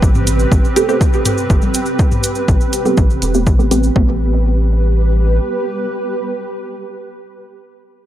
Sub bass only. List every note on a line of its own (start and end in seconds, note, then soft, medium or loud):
0.02 0.46 A1 loud
0.52 0.60 A1 loud
1.50 1.59 G1 medium
2.48 2.57 A1 loud
2.98 3.15 A1 medium
3.22 3.46 E1 medium
3.47 3.90 A1 loud
3.96 5.39 A1 medium